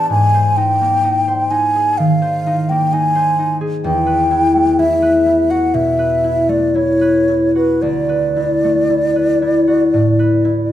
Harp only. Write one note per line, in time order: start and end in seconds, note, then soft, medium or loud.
0.00 0.14 A2 soft
0.00 0.13 E3 soft
0.00 0.13 B3 soft
0.00 0.14 D4 soft
0.00 0.14 G4 soft
0.00 0.14 B4 soft
0.10 3.86 G#2 soft
0.34 1.27 C5 soft
0.57 1.02 D#4 soft
0.81 2.69 A#3 soft
1.04 1.49 D#4 soft
1.28 2.21 C5 soft
1.50 2.45 D#4 soft
1.75 3.60 G#4 soft
1.99 3.87 D#3 soft
2.22 3.14 C5 soft
2.47 2.92 D#4 soft
2.70 3.88 A#3 soft
2.93 3.37 D#4 soft
3.16 3.87 C5 soft
3.39 3.87 D#4 soft
3.61 3.87 G#4 soft
3.84 7.74 E2 soft
4.07 5.01 B4 soft
4.31 4.78 E4 soft
4.55 6.48 A3 soft
4.79 5.25 E4 soft
5.02 5.98 B4 soft
5.26 6.23 E4 soft
5.50 7.54 F#4 soft
5.74 7.86 B2 soft
5.99 7.00 B4 soft
6.24 6.74 E4 soft
6.49 8.63 A3 soft
6.75 7.28 E4 soft
7.01 8.08 B4 soft
7.29 8.35 E4 soft
7.55 9.66 F#4 soft
7.82 10.72 D2 soft
8.09 9.15 B4 soft
8.36 8.88 E4 soft
8.64 10.70 A3 soft
8.89 9.41 E4 soft
9.16 10.18 B4 soft
9.42 10.44 E4 soft
9.68 10.72 F#4 soft
9.94 10.72 A2 soft
10.19 10.72 B4 soft
10.45 10.72 E4 soft